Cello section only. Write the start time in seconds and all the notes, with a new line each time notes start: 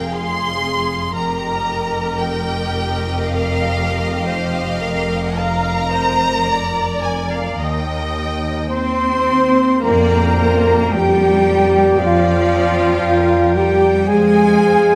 Already playing: F2
1.15 F2
7.58 D#2
8.71 C4
9.84 A#3
10.93 G3
11.98 F3
13.55 G3
14.08 G#3